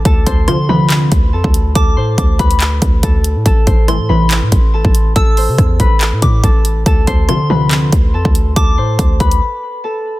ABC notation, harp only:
X:1
M:4/4
L:1/8
Q:1/4=141
K:Ddor
V:1 name="Harp"
[Aa] [cc']2 [Bb]3 [Aa]2 | [Aa] [cc']2 [Bb]3 [Aa] z | [Aa] [cc']2 [Bb]3 [Aa]2 | [Aa] [cc']2 [Bb]3 [Aa] z |
[Aa] [cc']2 [Bb]3 [Aa]2 | [Aa] [cc']2 [Bb]3 [Aa] z |]